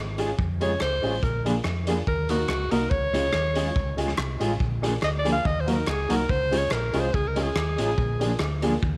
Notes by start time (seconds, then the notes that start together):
Already playing: G#1
0.18 G#3 C#4 F4 G#4, closed hi-hat
0.39 F2, kick
0.60 G#3 C#4 F4 G#4 C#5, closed hi-hat
0.80 C#2 C5, muted clean electric guitar stroke, cross-stick, clap
1.03 A1 G#3 C#4 F4 G#4, open hi-hat
1.23 A#1 A#4, kick, hi-hat pedal
1.45 F3 A#3 D4 F4 G#4, closed hi-hat
1.64 F2 F4 G#4, cross-stick, clap
1.87 F3 A#3 D4 F4 G#4, closed hi-hat
2.07 D#2 A#4, kick
2.29 A#3 D#4 F#4 A#4, closed hi-hat
2.49 C#2, muted clean electric guitar stroke, cross-stick, clap
2.71 C2 A#3 D#4 F#4 A#4, closed hi-hat
2.90 C#2 C#5, kick
3.13 G#3 C#4 F4 G#4, cross-stick, closed hi-hat
3.33 D#2, cross-stick, clap
3.55 G#3 C#4 F4 G#4, closed hi-hat
3.76 C#2, kick
3.97 G#3 C#4 F4 G#4, closed hi-hat
4.08 cross-stick
4.18 C2, muted clean electric guitar stroke, cross-stick, clap
4.39 A1 G#3 C#4 F4 G#4, closed hi-hat
4.60 A#1, kick
4.82 F3 A#3 D4 F4 G#4, cross-stick, closed hi-hat
5.02 D2 F4 G#4 D#5, cross-stick, clap
5.19 D5
5.24 F3 A#3 D4 F4 G#4, closed hi-hat
5.32 F5
5.45 D#2 D#5, kick
5.61 C5
5.66 F#3 A#3 D#4 F#4 A#4, closed hi-hat
5.71 A#4 C5
5.87 C#2 G#4, muted clean electric guitar stroke, cross-stick, clap
6.09 C2 F#3 A#3 D#4 F#4 A#4, closed hi-hat
6.16 A#4
6.29 C#2 C5, kick
6.51 G#3 C#4 F4 G#4, closed hi-hat
6.58 C#5
6.71 A#1 A#4, cross-stick, clap
6.93 C2 G#3 C#4 F4 G#4, closed hi-hat
7.00 C5
7.14 C#2 G#4, kick
7.28 A#4
7.36 G#3 C#4 F4 G#4, closed hi-hat
7.42 G#4
7.56 D#2, muted clean electric guitar stroke, cross-stick, clap
7.78 A1 G#3 C#4 F4 G#4, closed hi-hat
7.98 A#1, kick
8.20 F3 A#3 D4 F4 G#4, closed hi-hat
8.39 D2 F4 G#4, cross-stick, clap
8.62 F3 A#3 D4 F4 G#4, closed hi-hat
8.83 D#2, kick